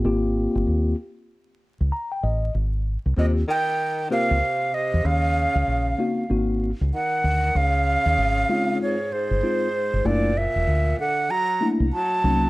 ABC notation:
X:1
M:4/4
L:1/16
Q:"Swing 16ths" 1/4=96
K:Ab
V:1 name="Flute"
z16 | z4 e2 g4 f4 e2 | f8 z4 _g4 | f8 d2 c6 |
=d2 _f4 _g2 b2 z2 =a4 |]
V:2 name="Tine electric piano"
[B,CFG]6 z6 b g e2 | z4 [B,CFG]2 z4 [B,CFB]2 z4 | z6 [B,CE_G]2 [B,CEG]2 z6 | z6 [A,CEF]2 z4 [A,CEF]2 z2 |
[=A,B,=D_F]2 z8 [A,B,DF]2 z2 [_G,A,B,_DE]2 |]
V:3 name="Tenor saxophone" clef=bass
z16 | z4 C,2 E,4 C,4 C,2 | D,8 z4 E,4 | D,8 A,,2 A,,6 |
B,,2 B,,4 =D,2 _G,2 z2 G,4 |]
V:4 name="Fingered electric bass" clef=bass
A,,,3 G,,, E,,2 z4 z D,, z2 =A,,,2 | A,,,3 C,, E,,2 z4 z D,, z3 _F,, | E,,3 D,, B,,,2 z2 A,,,3 D,, z2 =D,,2 | D,,3 E,, A,,,2 z4 z G,,, z3 G,,, |
_G,,,3 _F,,, =D,,2 z4 z C,, z2 C,,2 |]